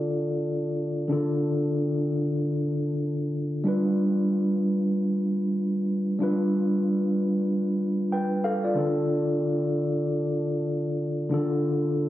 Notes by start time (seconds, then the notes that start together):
Already playing: D3 D4 F4 A4 D5
1.08 D3 D4 F4
1.13 A4
3.64 G3 D4 F4
3.68 B4
6.19 G3 D4 F4
6.23 B4
8.12 B4 G5
8.44 A4 F5
8.64 F4 D5
8.74 D3 D4 F4
8.79 A4
11.29 D3 D4 F4
11.34 A4